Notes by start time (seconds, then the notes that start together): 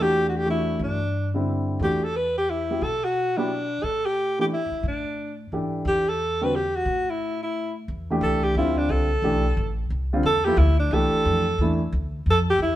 Already playing: E2
0.00 E3 A3 D4 F#4 G4
0.29 F#4
0.37 G4
0.46 E3 A3 D4 F#4
0.50 E4
0.80 G2
0.84 D4
1.34 D3 G3 C4 E4
1.80 E2 E3 A3 D4 F#4
1.84 G4
2.04 A4
2.16 B4
2.38 G4
2.50 E4
2.70 F#3 B3 E4 G4
2.81 B2 A4
3.04 F#4
3.37 F#3 B3 D4 E4 G4
3.83 A2 A4
4.06 G4
4.39 E3 A3 D4 G4
4.53 E4
4.71 muted upright bass stroke
4.83 A2
4.88 D4
5.52 G#2 E3 D4 G4 A4
5.85 E2 G4
6.09 A4
6.41 D3 G3 C4 F#4 B4
6.55 G4
6.76 F#4
6.85 A2
7.10 E4
7.43 E4
7.88 E2
8.10 E3 A3 D4 G4
8.21 C2 A4
8.44 G4
8.55 D2 D3 G3 C4 E4 F4
8.78 D4
8.89 C2 A4
9.22 B1 E3 A3 D4 G4
9.57 A1
9.90 C2
10.13 D3 G3 C4 F4
10.23 E2 A4
10.45 F3 B3 E4 G4 A4
10.57 D2 E4
10.80 D4
10.91 C2 E3 A3 D4 G4 A4
11.25 F2
11.58 E2 E3 A3 D4 E4
11.92 D2
12.26 F2
12.30 A4
12.50 G4
12.59 E2 E4